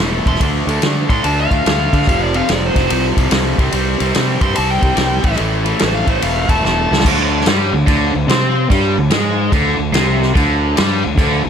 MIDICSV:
0, 0, Header, 1, 5, 480
1, 0, Start_track
1, 0, Tempo, 414651
1, 457, Time_signature, 4, 2, 24, 8
1, 13308, End_track
2, 0, Start_track
2, 0, Title_t, "Lead electric guitar"
2, 0, Program_c, 0, 29
2, 321, Note_on_c, 0, 84, 99
2, 465, Note_off_c, 0, 84, 0
2, 1270, Note_on_c, 0, 84, 79
2, 1438, Note_off_c, 0, 84, 0
2, 1438, Note_on_c, 0, 81, 84
2, 1587, Note_off_c, 0, 81, 0
2, 1622, Note_on_c, 0, 77, 91
2, 2540, Note_off_c, 0, 77, 0
2, 2584, Note_on_c, 0, 74, 81
2, 2723, Note_off_c, 0, 74, 0
2, 2737, Note_on_c, 0, 77, 85
2, 2918, Note_off_c, 0, 77, 0
2, 2918, Note_on_c, 0, 74, 85
2, 3080, Note_off_c, 0, 74, 0
2, 3080, Note_on_c, 0, 72, 109
2, 3524, Note_off_c, 0, 72, 0
2, 5112, Note_on_c, 0, 84, 92
2, 5270, Note_off_c, 0, 84, 0
2, 5284, Note_on_c, 0, 81, 92
2, 5436, Note_off_c, 0, 81, 0
2, 5447, Note_on_c, 0, 79, 98
2, 6218, Note_off_c, 0, 79, 0
2, 6723, Note_on_c, 0, 72, 98
2, 6875, Note_off_c, 0, 72, 0
2, 6883, Note_on_c, 0, 77, 96
2, 7035, Note_off_c, 0, 77, 0
2, 7054, Note_on_c, 0, 72, 81
2, 7201, Note_off_c, 0, 72, 0
2, 7214, Note_on_c, 0, 77, 81
2, 7515, Note_off_c, 0, 77, 0
2, 7523, Note_on_c, 0, 81, 85
2, 7675, Note_off_c, 0, 81, 0
2, 7696, Note_on_c, 0, 81, 95
2, 8151, Note_off_c, 0, 81, 0
2, 13308, End_track
3, 0, Start_track
3, 0, Title_t, "Overdriven electric guitar"
3, 0, Program_c, 1, 29
3, 0, Note_on_c, 1, 45, 92
3, 4, Note_on_c, 1, 52, 99
3, 13, Note_on_c, 1, 57, 93
3, 296, Note_off_c, 1, 45, 0
3, 301, Note_off_c, 1, 52, 0
3, 310, Note_on_c, 1, 45, 67
3, 312, Note_off_c, 1, 57, 0
3, 314, Note_on_c, 1, 52, 77
3, 316, Note_on_c, 1, 57, 89
3, 458, Note_off_c, 1, 45, 0
3, 460, Note_off_c, 1, 52, 0
3, 482, Note_on_c, 1, 50, 82
3, 493, Note_off_c, 1, 57, 0
3, 493, Note_on_c, 1, 57, 81
3, 500, Note_on_c, 1, 62, 90
3, 780, Note_off_c, 1, 50, 0
3, 790, Note_off_c, 1, 62, 0
3, 794, Note_off_c, 1, 57, 0
3, 794, Note_on_c, 1, 50, 75
3, 799, Note_on_c, 1, 57, 79
3, 804, Note_on_c, 1, 62, 86
3, 948, Note_off_c, 1, 50, 0
3, 962, Note_on_c, 1, 50, 85
3, 963, Note_off_c, 1, 62, 0
3, 964, Note_off_c, 1, 57, 0
3, 969, Note_on_c, 1, 57, 95
3, 977, Note_on_c, 1, 62, 81
3, 1251, Note_off_c, 1, 50, 0
3, 1258, Note_off_c, 1, 57, 0
3, 1262, Note_off_c, 1, 62, 0
3, 1265, Note_on_c, 1, 50, 79
3, 1272, Note_on_c, 1, 57, 81
3, 1276, Note_on_c, 1, 62, 82
3, 1420, Note_off_c, 1, 50, 0
3, 1422, Note_off_c, 1, 62, 0
3, 1424, Note_off_c, 1, 57, 0
3, 1434, Note_on_c, 1, 50, 86
3, 1436, Note_on_c, 1, 62, 98
3, 1438, Note_on_c, 1, 57, 90
3, 1737, Note_off_c, 1, 57, 0
3, 1740, Note_off_c, 1, 50, 0
3, 1748, Note_off_c, 1, 62, 0
3, 1751, Note_on_c, 1, 57, 87
3, 1754, Note_on_c, 1, 50, 72
3, 1762, Note_on_c, 1, 62, 77
3, 1899, Note_off_c, 1, 50, 0
3, 1909, Note_off_c, 1, 57, 0
3, 1913, Note_on_c, 1, 50, 73
3, 1920, Note_off_c, 1, 62, 0
3, 1923, Note_on_c, 1, 57, 91
3, 1934, Note_on_c, 1, 62, 99
3, 2220, Note_off_c, 1, 50, 0
3, 2222, Note_off_c, 1, 57, 0
3, 2231, Note_off_c, 1, 62, 0
3, 2234, Note_on_c, 1, 50, 69
3, 2236, Note_on_c, 1, 57, 73
3, 2245, Note_on_c, 1, 62, 87
3, 2385, Note_off_c, 1, 50, 0
3, 2386, Note_off_c, 1, 57, 0
3, 2390, Note_off_c, 1, 62, 0
3, 2398, Note_on_c, 1, 41, 88
3, 2400, Note_on_c, 1, 48, 90
3, 2408, Note_on_c, 1, 53, 87
3, 2700, Note_off_c, 1, 41, 0
3, 2709, Note_off_c, 1, 48, 0
3, 2714, Note_on_c, 1, 41, 81
3, 2715, Note_off_c, 1, 53, 0
3, 2723, Note_on_c, 1, 48, 93
3, 2729, Note_on_c, 1, 53, 89
3, 2868, Note_off_c, 1, 41, 0
3, 2871, Note_off_c, 1, 48, 0
3, 2878, Note_off_c, 1, 53, 0
3, 2882, Note_on_c, 1, 41, 83
3, 2885, Note_on_c, 1, 48, 99
3, 2892, Note_on_c, 1, 53, 99
3, 3162, Note_off_c, 1, 41, 0
3, 3176, Note_on_c, 1, 41, 71
3, 3182, Note_off_c, 1, 48, 0
3, 3184, Note_off_c, 1, 53, 0
3, 3196, Note_on_c, 1, 48, 84
3, 3198, Note_on_c, 1, 53, 82
3, 3339, Note_off_c, 1, 41, 0
3, 3349, Note_off_c, 1, 48, 0
3, 3352, Note_off_c, 1, 53, 0
3, 3353, Note_on_c, 1, 41, 91
3, 3362, Note_on_c, 1, 48, 90
3, 3366, Note_on_c, 1, 53, 100
3, 3647, Note_off_c, 1, 41, 0
3, 3655, Note_off_c, 1, 48, 0
3, 3661, Note_on_c, 1, 41, 70
3, 3662, Note_off_c, 1, 53, 0
3, 3669, Note_on_c, 1, 48, 83
3, 3676, Note_on_c, 1, 53, 84
3, 3810, Note_off_c, 1, 41, 0
3, 3820, Note_off_c, 1, 48, 0
3, 3824, Note_off_c, 1, 53, 0
3, 3824, Note_on_c, 1, 41, 92
3, 3834, Note_on_c, 1, 48, 100
3, 3838, Note_on_c, 1, 53, 102
3, 4125, Note_off_c, 1, 41, 0
3, 4130, Note_off_c, 1, 48, 0
3, 4132, Note_off_c, 1, 53, 0
3, 4148, Note_on_c, 1, 48, 88
3, 4154, Note_on_c, 1, 55, 93
3, 4161, Note_on_c, 1, 60, 91
3, 4300, Note_off_c, 1, 48, 0
3, 4312, Note_off_c, 1, 55, 0
3, 4314, Note_on_c, 1, 48, 81
3, 4326, Note_off_c, 1, 60, 0
3, 4326, Note_on_c, 1, 55, 100
3, 4340, Note_on_c, 1, 60, 98
3, 4633, Note_off_c, 1, 48, 0
3, 4637, Note_off_c, 1, 55, 0
3, 4644, Note_off_c, 1, 60, 0
3, 4647, Note_on_c, 1, 48, 81
3, 4651, Note_on_c, 1, 55, 81
3, 4658, Note_on_c, 1, 60, 82
3, 4773, Note_off_c, 1, 48, 0
3, 4786, Note_off_c, 1, 55, 0
3, 4787, Note_on_c, 1, 48, 96
3, 4793, Note_off_c, 1, 60, 0
3, 4800, Note_on_c, 1, 55, 91
3, 4806, Note_on_c, 1, 60, 97
3, 5079, Note_off_c, 1, 48, 0
3, 5091, Note_off_c, 1, 55, 0
3, 5093, Note_on_c, 1, 48, 87
3, 5098, Note_off_c, 1, 60, 0
3, 5105, Note_on_c, 1, 55, 90
3, 5112, Note_on_c, 1, 60, 84
3, 5244, Note_off_c, 1, 48, 0
3, 5247, Note_off_c, 1, 55, 0
3, 5258, Note_on_c, 1, 48, 89
3, 5259, Note_off_c, 1, 60, 0
3, 5261, Note_on_c, 1, 55, 94
3, 5273, Note_on_c, 1, 60, 99
3, 5564, Note_off_c, 1, 48, 0
3, 5564, Note_off_c, 1, 55, 0
3, 5569, Note_off_c, 1, 60, 0
3, 5577, Note_on_c, 1, 48, 72
3, 5578, Note_on_c, 1, 55, 80
3, 5583, Note_on_c, 1, 60, 75
3, 5714, Note_off_c, 1, 48, 0
3, 5722, Note_off_c, 1, 55, 0
3, 5728, Note_on_c, 1, 48, 83
3, 5734, Note_off_c, 1, 60, 0
3, 5736, Note_on_c, 1, 55, 95
3, 5747, Note_on_c, 1, 60, 101
3, 6038, Note_off_c, 1, 48, 0
3, 6042, Note_off_c, 1, 55, 0
3, 6047, Note_off_c, 1, 60, 0
3, 6052, Note_on_c, 1, 45, 85
3, 6062, Note_on_c, 1, 52, 82
3, 6070, Note_on_c, 1, 57, 97
3, 6207, Note_off_c, 1, 45, 0
3, 6210, Note_off_c, 1, 52, 0
3, 6215, Note_off_c, 1, 57, 0
3, 6220, Note_on_c, 1, 45, 91
3, 6224, Note_on_c, 1, 52, 85
3, 6229, Note_on_c, 1, 57, 97
3, 6519, Note_off_c, 1, 45, 0
3, 6527, Note_off_c, 1, 52, 0
3, 6533, Note_on_c, 1, 45, 78
3, 6535, Note_off_c, 1, 57, 0
3, 6541, Note_on_c, 1, 52, 79
3, 6549, Note_on_c, 1, 57, 84
3, 6701, Note_off_c, 1, 45, 0
3, 6711, Note_off_c, 1, 52, 0
3, 6712, Note_off_c, 1, 57, 0
3, 6715, Note_on_c, 1, 45, 92
3, 6725, Note_on_c, 1, 52, 86
3, 6726, Note_on_c, 1, 57, 100
3, 7006, Note_off_c, 1, 45, 0
3, 7007, Note_off_c, 1, 52, 0
3, 7016, Note_off_c, 1, 57, 0
3, 7020, Note_on_c, 1, 45, 82
3, 7021, Note_on_c, 1, 52, 82
3, 7029, Note_on_c, 1, 57, 88
3, 7172, Note_off_c, 1, 45, 0
3, 7186, Note_on_c, 1, 45, 95
3, 7190, Note_off_c, 1, 52, 0
3, 7197, Note_off_c, 1, 57, 0
3, 7204, Note_on_c, 1, 52, 100
3, 7211, Note_on_c, 1, 57, 90
3, 7498, Note_off_c, 1, 45, 0
3, 7503, Note_off_c, 1, 52, 0
3, 7512, Note_on_c, 1, 45, 69
3, 7513, Note_off_c, 1, 57, 0
3, 7517, Note_on_c, 1, 52, 75
3, 7527, Note_on_c, 1, 57, 80
3, 7676, Note_off_c, 1, 45, 0
3, 7679, Note_off_c, 1, 52, 0
3, 7686, Note_off_c, 1, 57, 0
3, 7690, Note_on_c, 1, 45, 85
3, 7693, Note_on_c, 1, 52, 90
3, 7700, Note_on_c, 1, 57, 100
3, 7980, Note_off_c, 1, 45, 0
3, 7988, Note_off_c, 1, 52, 0
3, 7994, Note_on_c, 1, 45, 61
3, 7999, Note_off_c, 1, 57, 0
3, 8002, Note_on_c, 1, 52, 71
3, 8013, Note_on_c, 1, 57, 82
3, 8147, Note_off_c, 1, 45, 0
3, 8151, Note_off_c, 1, 52, 0
3, 8157, Note_off_c, 1, 57, 0
3, 8161, Note_on_c, 1, 50, 105
3, 8632, Note_off_c, 1, 50, 0
3, 8651, Note_on_c, 1, 55, 96
3, 8946, Note_off_c, 1, 55, 0
3, 8958, Note_on_c, 1, 50, 72
3, 9085, Note_off_c, 1, 50, 0
3, 9106, Note_on_c, 1, 50, 113
3, 9413, Note_off_c, 1, 50, 0
3, 9433, Note_on_c, 1, 50, 68
3, 9562, Note_off_c, 1, 50, 0
3, 9596, Note_on_c, 1, 60, 109
3, 10067, Note_off_c, 1, 60, 0
3, 10074, Note_on_c, 1, 55, 98
3, 10375, Note_off_c, 1, 55, 0
3, 10395, Note_on_c, 1, 50, 72
3, 10521, Note_off_c, 1, 50, 0
3, 10556, Note_on_c, 1, 56, 111
3, 11025, Note_off_c, 1, 56, 0
3, 11025, Note_on_c, 1, 50, 109
3, 11324, Note_off_c, 1, 50, 0
3, 11338, Note_on_c, 1, 50, 73
3, 11470, Note_off_c, 1, 50, 0
3, 11496, Note_on_c, 1, 48, 92
3, 11967, Note_off_c, 1, 48, 0
3, 11972, Note_on_c, 1, 50, 105
3, 12450, Note_off_c, 1, 50, 0
3, 12464, Note_on_c, 1, 55, 106
3, 12765, Note_off_c, 1, 55, 0
3, 12781, Note_on_c, 1, 50, 73
3, 12909, Note_off_c, 1, 50, 0
3, 12945, Note_on_c, 1, 50, 100
3, 13239, Note_off_c, 1, 50, 0
3, 13253, Note_on_c, 1, 50, 77
3, 13308, Note_off_c, 1, 50, 0
3, 13308, End_track
4, 0, Start_track
4, 0, Title_t, "Fingered electric bass"
4, 0, Program_c, 2, 33
4, 0, Note_on_c, 2, 28, 89
4, 228, Note_off_c, 2, 28, 0
4, 297, Note_on_c, 2, 28, 84
4, 428, Note_off_c, 2, 28, 0
4, 474, Note_on_c, 2, 38, 79
4, 720, Note_off_c, 2, 38, 0
4, 776, Note_on_c, 2, 38, 90
4, 908, Note_off_c, 2, 38, 0
4, 957, Note_on_c, 2, 50, 80
4, 1203, Note_off_c, 2, 50, 0
4, 1265, Note_on_c, 2, 45, 67
4, 1395, Note_off_c, 2, 45, 0
4, 1441, Note_on_c, 2, 38, 80
4, 1686, Note_off_c, 2, 38, 0
4, 1758, Note_on_c, 2, 38, 76
4, 1884, Note_off_c, 2, 38, 0
4, 1921, Note_on_c, 2, 38, 83
4, 2167, Note_off_c, 2, 38, 0
4, 2233, Note_on_c, 2, 50, 91
4, 2362, Note_off_c, 2, 50, 0
4, 2409, Note_on_c, 2, 29, 83
4, 2786, Note_off_c, 2, 29, 0
4, 2886, Note_on_c, 2, 29, 81
4, 3132, Note_off_c, 2, 29, 0
4, 3198, Note_on_c, 2, 29, 66
4, 3326, Note_off_c, 2, 29, 0
4, 3369, Note_on_c, 2, 36, 93
4, 3614, Note_off_c, 2, 36, 0
4, 3671, Note_on_c, 2, 36, 84
4, 3803, Note_off_c, 2, 36, 0
4, 3837, Note_on_c, 2, 36, 89
4, 4087, Note_off_c, 2, 36, 0
4, 4142, Note_on_c, 2, 36, 91
4, 4278, Note_off_c, 2, 36, 0
4, 4317, Note_on_c, 2, 36, 85
4, 4568, Note_off_c, 2, 36, 0
4, 4634, Note_on_c, 2, 36, 96
4, 4765, Note_off_c, 2, 36, 0
4, 4817, Note_on_c, 2, 48, 83
4, 5060, Note_off_c, 2, 48, 0
4, 5108, Note_on_c, 2, 43, 81
4, 5242, Note_off_c, 2, 43, 0
4, 5302, Note_on_c, 2, 36, 89
4, 5543, Note_off_c, 2, 36, 0
4, 5583, Note_on_c, 2, 36, 89
4, 5719, Note_off_c, 2, 36, 0
4, 5751, Note_on_c, 2, 36, 92
4, 6005, Note_off_c, 2, 36, 0
4, 6060, Note_on_c, 2, 33, 86
4, 6197, Note_off_c, 2, 33, 0
4, 6244, Note_on_c, 2, 33, 87
4, 6625, Note_off_c, 2, 33, 0
4, 6740, Note_on_c, 2, 33, 85
4, 6982, Note_off_c, 2, 33, 0
4, 7028, Note_on_c, 2, 33, 70
4, 7162, Note_off_c, 2, 33, 0
4, 7212, Note_on_c, 2, 28, 86
4, 7456, Note_off_c, 2, 28, 0
4, 7510, Note_on_c, 2, 28, 83
4, 7643, Note_off_c, 2, 28, 0
4, 7696, Note_on_c, 2, 28, 88
4, 7938, Note_off_c, 2, 28, 0
4, 7999, Note_on_c, 2, 37, 89
4, 8128, Note_off_c, 2, 37, 0
4, 8157, Note_on_c, 2, 38, 89
4, 8602, Note_off_c, 2, 38, 0
4, 8634, Note_on_c, 2, 43, 88
4, 8925, Note_off_c, 2, 43, 0
4, 8951, Note_on_c, 2, 38, 75
4, 9103, Note_off_c, 2, 38, 0
4, 9119, Note_on_c, 2, 38, 93
4, 9407, Note_off_c, 2, 38, 0
4, 9436, Note_on_c, 2, 38, 80
4, 9568, Note_off_c, 2, 38, 0
4, 9575, Note_on_c, 2, 48, 99
4, 10027, Note_off_c, 2, 48, 0
4, 10083, Note_on_c, 2, 43, 93
4, 10367, Note_off_c, 2, 43, 0
4, 10393, Note_on_c, 2, 38, 90
4, 10528, Note_off_c, 2, 38, 0
4, 10535, Note_on_c, 2, 44, 87
4, 10986, Note_off_c, 2, 44, 0
4, 11030, Note_on_c, 2, 38, 94
4, 11319, Note_off_c, 2, 38, 0
4, 11333, Note_on_c, 2, 38, 76
4, 11479, Note_off_c, 2, 38, 0
4, 11486, Note_on_c, 2, 36, 97
4, 11939, Note_off_c, 2, 36, 0
4, 11992, Note_on_c, 2, 38, 102
4, 12432, Note_off_c, 2, 38, 0
4, 12492, Note_on_c, 2, 43, 100
4, 12768, Note_off_c, 2, 43, 0
4, 12800, Note_on_c, 2, 38, 77
4, 12928, Note_off_c, 2, 38, 0
4, 12935, Note_on_c, 2, 38, 104
4, 13227, Note_off_c, 2, 38, 0
4, 13263, Note_on_c, 2, 38, 77
4, 13308, Note_off_c, 2, 38, 0
4, 13308, End_track
5, 0, Start_track
5, 0, Title_t, "Drums"
5, 0, Note_on_c, 9, 38, 95
5, 115, Note_off_c, 9, 38, 0
5, 302, Note_on_c, 9, 36, 74
5, 308, Note_on_c, 9, 51, 57
5, 408, Note_on_c, 9, 38, 31
5, 417, Note_off_c, 9, 36, 0
5, 424, Note_off_c, 9, 51, 0
5, 469, Note_on_c, 9, 36, 92
5, 470, Note_on_c, 9, 51, 84
5, 524, Note_off_c, 9, 38, 0
5, 585, Note_off_c, 9, 36, 0
5, 586, Note_off_c, 9, 51, 0
5, 793, Note_on_c, 9, 51, 58
5, 909, Note_off_c, 9, 51, 0
5, 948, Note_on_c, 9, 51, 80
5, 961, Note_on_c, 9, 38, 98
5, 1064, Note_off_c, 9, 51, 0
5, 1077, Note_off_c, 9, 38, 0
5, 1267, Note_on_c, 9, 36, 82
5, 1271, Note_on_c, 9, 51, 54
5, 1383, Note_off_c, 9, 36, 0
5, 1387, Note_off_c, 9, 51, 0
5, 1435, Note_on_c, 9, 51, 77
5, 1551, Note_off_c, 9, 51, 0
5, 1748, Note_on_c, 9, 36, 80
5, 1751, Note_on_c, 9, 51, 57
5, 1864, Note_off_c, 9, 36, 0
5, 1867, Note_off_c, 9, 51, 0
5, 1923, Note_on_c, 9, 51, 72
5, 1936, Note_on_c, 9, 38, 102
5, 2039, Note_off_c, 9, 51, 0
5, 2052, Note_off_c, 9, 38, 0
5, 2235, Note_on_c, 9, 36, 71
5, 2238, Note_on_c, 9, 51, 58
5, 2336, Note_on_c, 9, 38, 32
5, 2351, Note_off_c, 9, 36, 0
5, 2354, Note_off_c, 9, 51, 0
5, 2401, Note_on_c, 9, 36, 97
5, 2416, Note_on_c, 9, 51, 77
5, 2452, Note_off_c, 9, 38, 0
5, 2517, Note_off_c, 9, 36, 0
5, 2532, Note_off_c, 9, 51, 0
5, 2711, Note_on_c, 9, 51, 56
5, 2827, Note_off_c, 9, 51, 0
5, 2877, Note_on_c, 9, 51, 83
5, 2890, Note_on_c, 9, 38, 90
5, 2993, Note_off_c, 9, 51, 0
5, 3006, Note_off_c, 9, 38, 0
5, 3192, Note_on_c, 9, 36, 74
5, 3194, Note_on_c, 9, 51, 59
5, 3207, Note_on_c, 9, 38, 29
5, 3307, Note_off_c, 9, 36, 0
5, 3310, Note_off_c, 9, 51, 0
5, 3323, Note_off_c, 9, 38, 0
5, 3359, Note_on_c, 9, 51, 95
5, 3475, Note_off_c, 9, 51, 0
5, 3669, Note_on_c, 9, 36, 72
5, 3675, Note_on_c, 9, 51, 67
5, 3785, Note_off_c, 9, 36, 0
5, 3791, Note_off_c, 9, 51, 0
5, 3831, Note_on_c, 9, 51, 92
5, 3844, Note_on_c, 9, 38, 98
5, 3947, Note_off_c, 9, 51, 0
5, 3959, Note_off_c, 9, 38, 0
5, 4149, Note_on_c, 9, 36, 92
5, 4155, Note_on_c, 9, 51, 68
5, 4265, Note_off_c, 9, 36, 0
5, 4271, Note_off_c, 9, 51, 0
5, 4311, Note_on_c, 9, 51, 86
5, 4427, Note_off_c, 9, 51, 0
5, 4632, Note_on_c, 9, 51, 62
5, 4748, Note_off_c, 9, 51, 0
5, 4798, Note_on_c, 9, 51, 86
5, 4811, Note_on_c, 9, 38, 94
5, 4914, Note_off_c, 9, 51, 0
5, 4927, Note_off_c, 9, 38, 0
5, 5106, Note_on_c, 9, 51, 62
5, 5108, Note_on_c, 9, 36, 85
5, 5222, Note_off_c, 9, 51, 0
5, 5224, Note_off_c, 9, 36, 0
5, 5273, Note_on_c, 9, 51, 82
5, 5388, Note_off_c, 9, 51, 0
5, 5585, Note_on_c, 9, 36, 73
5, 5585, Note_on_c, 9, 51, 62
5, 5701, Note_off_c, 9, 36, 0
5, 5701, Note_off_c, 9, 51, 0
5, 5749, Note_on_c, 9, 51, 77
5, 5762, Note_on_c, 9, 38, 87
5, 5865, Note_off_c, 9, 51, 0
5, 5878, Note_off_c, 9, 38, 0
5, 6061, Note_on_c, 9, 51, 53
5, 6066, Note_on_c, 9, 36, 89
5, 6160, Note_on_c, 9, 38, 30
5, 6177, Note_off_c, 9, 51, 0
5, 6181, Note_off_c, 9, 36, 0
5, 6220, Note_on_c, 9, 51, 74
5, 6276, Note_off_c, 9, 38, 0
5, 6336, Note_off_c, 9, 51, 0
5, 6547, Note_on_c, 9, 51, 55
5, 6663, Note_off_c, 9, 51, 0
5, 6706, Note_on_c, 9, 51, 82
5, 6719, Note_on_c, 9, 38, 103
5, 6822, Note_off_c, 9, 51, 0
5, 6835, Note_off_c, 9, 38, 0
5, 7029, Note_on_c, 9, 36, 79
5, 7031, Note_on_c, 9, 51, 62
5, 7145, Note_off_c, 9, 36, 0
5, 7147, Note_off_c, 9, 51, 0
5, 7204, Note_on_c, 9, 51, 80
5, 7320, Note_off_c, 9, 51, 0
5, 7510, Note_on_c, 9, 36, 76
5, 7514, Note_on_c, 9, 51, 68
5, 7626, Note_off_c, 9, 36, 0
5, 7630, Note_off_c, 9, 51, 0
5, 7700, Note_on_c, 9, 38, 51
5, 7815, Note_off_c, 9, 38, 0
5, 8022, Note_on_c, 9, 38, 73
5, 8100, Note_off_c, 9, 38, 0
5, 8100, Note_on_c, 9, 38, 91
5, 8159, Note_on_c, 9, 36, 85
5, 8171, Note_on_c, 9, 49, 100
5, 8171, Note_on_c, 9, 57, 52
5, 8216, Note_off_c, 9, 38, 0
5, 8275, Note_off_c, 9, 36, 0
5, 8286, Note_off_c, 9, 49, 0
5, 8286, Note_off_c, 9, 57, 0
5, 8575, Note_on_c, 9, 38, 32
5, 8636, Note_on_c, 9, 57, 62
5, 8649, Note_off_c, 9, 38, 0
5, 8649, Note_on_c, 9, 38, 112
5, 8752, Note_off_c, 9, 57, 0
5, 8764, Note_off_c, 9, 38, 0
5, 9113, Note_on_c, 9, 36, 102
5, 9122, Note_on_c, 9, 57, 61
5, 9229, Note_off_c, 9, 36, 0
5, 9237, Note_off_c, 9, 57, 0
5, 9601, Note_on_c, 9, 57, 55
5, 9614, Note_on_c, 9, 38, 96
5, 9717, Note_off_c, 9, 57, 0
5, 9730, Note_off_c, 9, 38, 0
5, 10073, Note_on_c, 9, 36, 88
5, 10086, Note_on_c, 9, 57, 55
5, 10189, Note_off_c, 9, 36, 0
5, 10202, Note_off_c, 9, 57, 0
5, 10541, Note_on_c, 9, 57, 57
5, 10554, Note_on_c, 9, 38, 104
5, 10657, Note_off_c, 9, 57, 0
5, 10669, Note_off_c, 9, 38, 0
5, 11024, Note_on_c, 9, 36, 114
5, 11027, Note_on_c, 9, 57, 61
5, 11140, Note_off_c, 9, 36, 0
5, 11143, Note_off_c, 9, 57, 0
5, 11506, Note_on_c, 9, 57, 62
5, 11519, Note_on_c, 9, 38, 106
5, 11622, Note_off_c, 9, 57, 0
5, 11634, Note_off_c, 9, 38, 0
5, 11835, Note_on_c, 9, 38, 29
5, 11951, Note_off_c, 9, 38, 0
5, 11987, Note_on_c, 9, 36, 97
5, 12001, Note_on_c, 9, 57, 56
5, 12102, Note_off_c, 9, 36, 0
5, 12116, Note_off_c, 9, 57, 0
5, 12468, Note_on_c, 9, 57, 59
5, 12481, Note_on_c, 9, 38, 105
5, 12584, Note_off_c, 9, 57, 0
5, 12597, Note_off_c, 9, 38, 0
5, 12938, Note_on_c, 9, 36, 112
5, 12948, Note_on_c, 9, 57, 60
5, 13054, Note_off_c, 9, 36, 0
5, 13064, Note_off_c, 9, 57, 0
5, 13308, End_track
0, 0, End_of_file